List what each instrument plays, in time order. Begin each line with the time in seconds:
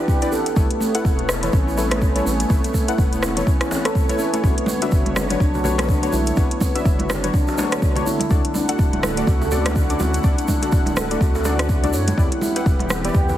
Already playing: analog synth pad E3 B3 G4 F#5, synth keys E4 G4 B4 D5
0.08 handpan G4, kick, djembe tone, shaker
0.22 handpan D4, synth keys E4 G4 B4 D5, closed hi-hat, shaker
0.32 handpan A4, djembe tone, shaker
0.46 closed hi-hat, shaker
0.56 analog synth bass A1, handpan A3, analog synth pad A3 C#5, synth keys E4 A4 B4 C#5, kick, djembe tone, shaker
0.70 closed hi-hat
0.80 handpan A3, djembe tone, shaker
0.95 synth keys E4 A4 B4 F#5, closed hi-hat, shaker
1.05 analog synth bass E1, kick, djembe tone, shaker
1.19 closed hi-hat
1.29 handpan E4, cross-stick, djembe slap, djembe tone, shaker
1.43 handpan E3, synth keys E4 A4 B4 C#5, closed hi-hat, shaker
1.53 analog synth bass A1, handpan C#4, kick, djembe tone, shaker
1.67 handpan E4, shaker
1.77 handpan G3, synth keys E4 A4 B4 C#5, djembe tone, shaker
1.91 handpan A3, cross-stick, closed hi-hat, djembe slap, shaker
2.02 handpan C#4, kick, djembe tone, shaker
2.16 handpan G3, synth keys E4 A4 B4 C#5, closed hi-hat, shaker
2.26 analog synth bass A1, handpan C#4, djembe tone, shaker
2.40 closed hi-hat, shaker
2.50 analog synth bass A1, handpan A3, synth keys E4 A4 B4 C#5, kick, djembe tone, shaker
2.64 closed hi-hat, shaker
2.74 handpan A3, kick, djembe tone, shaker
2.88 synth keys E4 A4 B4 F#5, closed hi-hat, shaker
2.98 analog synth bass E1, kick, djembe tone, shaker
3.13 closed hi-hat, shaker
3.23 handpan E4, cross-stick, djembe slap, djembe tone, shaker
3.37 handpan E3, synth keys E4 A4 B4 C#5, closed hi-hat, shaker
3.46 handpan C#4, kick, djembe tone, shaker
3.61 handpan E4, cross-stick, closed hi-hat, djembe slap, shaker
3.71 handpan E3, djembe slap, djembe tone, shaker
3.85 synth keys E4 A4 B4 C#5, handpan A4, cross-stick, closed hi-hat, shaker
3.95 handpan A3, kick, djembe tone, shaker
4.09 handpan A3, synth keys E4 A4 B4 C#5, closed hi-hat, shaker
4.19 handpan C#4, djembe tone, shaker
4.33 handpan A3, synth keys E4 A4 B4 C#5, closed hi-hat, shaker
4.43 analog synth bass B1, analog synth pad D3, handpan B3, synth keys D4 F#4 B4 C#5, kick, djembe tone, shaker
4.58 closed hi-hat
4.66 handpan B3, high conga, djembe tone, shaker
4.82 synth keys D4 F#4 B4 E5, closed hi-hat, shaker
4.91 analog synth bass F#1, kick, djembe tone, shaker
5.06 closed hi-hat, high conga
5.16 handpan F#4, cross-stick, djembe slap, high conga, djembe tone, shaker
5.30 handpan F#3, synth keys D4 F#4 B4 C#5, closed hi-hat, shaker
5.40 analog synth bass B1, handpan D4, kick, djembe tone, shaker
5.55 handpan F#4, low conga, shaker
5.64 handpan A3, synth keys D4 F#4 B4 C#5, djembe tone, low conga, shaker
5.78 handpan B3, cross-stick, closed hi-hat, djembe slap, high conga, shaker
5.88 handpan D4, kick, djembe tone, shaker
6.03 handpan A3, synth keys D4 F#4 B4 C#5, closed hi-hat, shaker
6.12 analog synth bass B1, handpan E4, high conga, djembe tone, shaker
6.26 closed hi-hat, shaker
6.36 analog synth bass B1, handpan B3, synth keys D4 F#4 B4 C#5, kick, djembe tone, shaker
6.51 closed hi-hat
6.61 handpan B3, kick, high conga, djembe tone, shaker
6.75 synth keys D4 F#4 B4 E5, closed hi-hat, shaker
6.85 analog synth bass F#1, kick, djembe tone, shaker
6.99 closed hi-hat, high conga
7.09 handpan F#4, cross-stick, djembe slap, high conga, djembe tone, low conga, shaker
7.24 handpan F#3, synth keys D4 F#4 B4 C#5, closed hi-hat, shaker
7.34 handpan D4, kick, djembe tone, shaker
7.47 handpan F#4, djembe slap, shaker
7.58 handpan A3, synth keys D4 F#4 B4 C#5, djembe slap, djembe tone, high conga, shaker
7.72 handpan B3, cross-stick, closed hi-hat, shaker
7.82 handpan D4, kick, djembe tone, shaker
7.96 handpan A3, synth keys D4 F#4 B4 C#5, closed hi-hat, high conga, low conga, shaker
8.06 handpan E4, djembe tone, shaker
8.20 closed hi-hat, high conga, shaker
8.30 analog synth bass D2, analog synth pad A3 E4 F#5, synth keys D4 F#4 A4 D5, handpan D4, kick, djembe tone, shaker
8.45 closed hi-hat
8.54 handpan D4, high conga, djembe tone, shaker
8.68 synth keys D4 F#4 A4 F#5, closed hi-hat, shaker
8.78 analog synth bass D1, kick, djembe tone, shaker
8.93 closed hi-hat, high conga
9.03 handpan A4, cross-stick, djembe slap, high conga, djembe tone, shaker
9.17 handpan A3, synth keys D4 F#4 A4 D5, closed hi-hat, shaker
9.27 analog synth bass D2, handpan F#4, kick, djembe tone, shaker
9.41 handpan A4, low conga, shaker
9.51 handpan C#4, synth keys D4 F#4 A4 D5, djembe tone, low conga, shaker
9.66 handpan D4, cross-stick, closed hi-hat, djembe slap, high conga, shaker
9.76 handpan F#4, kick, djembe tone, shaker
9.90 handpan C#4, synth keys D4 F#4 A4 D5, closed hi-hat, shaker
9.99 analog synth bass D2, handpan F#4, high conga, djembe tone, shaker
10.14 closed hi-hat, shaker
10.23 analog synth bass D2, handpan D4, synth keys D4 F#4 A4 D5, kick, djembe tone, shaker
10.38 closed hi-hat, shaker
10.48 handpan D4, kick, djembe tone, high conga, shaker
10.62 synth keys D4 F#4 A4 F#5, closed hi-hat, shaker
10.72 analog synth bass D1, kick, djembe tone, shaker
10.86 closed hi-hat, high conga, shaker
10.96 handpan A4, cross-stick, djembe slap, djembe tone, high conga, low conga, shaker
11.11 handpan A3, synth keys D4 F#4 A4 D5, closed hi-hat, shaker
11.21 analog synth bass D2, handpan F#4, kick, djembe tone, shaker
11.35 handpan A4, djembe slap, shaker
11.44 handpan C#4, synth keys D4 F#4 A4 D5, djembe slap, djembe tone, high conga, shaker
11.59 handpan F#4, cross-stick, closed hi-hat, shaker
11.69 handpan F#4, kick, djembe tone, shaker
11.83 synth keys D4 F#4 A4 D5, handpan D4, closed hi-hat, high conga, low conga, shaker
11.93 analog synth bass F#2, handpan C#5, djembe tone, shaker
12.08 closed hi-hat, high conga, shaker
12.18 analog synth bass E2, analog synth pad E3 B3 G4, handpan E4, synth keys E4 G4 B4 D5, kick, djembe tone, shaker
12.32 handpan E4, closed hi-hat
12.41 handpan E4, high conga, djembe tone, shaker
12.56 synth keys E4 G4 B4 F#5, closed hi-hat, shaker
12.66 analog synth bass E1, kick, djembe tone, shaker
12.79 closed hi-hat, high conga
12.90 handpan B4, cross-stick, djembe slap, high conga, djembe tone, shaker
13.05 handpan B3, synth keys E4 G4 B4 D5, closed hi-hat, shaker
13.14 analog synth bass E2, handpan G4, kick, djembe tone, shaker
13.29 handpan B4, low conga, shaker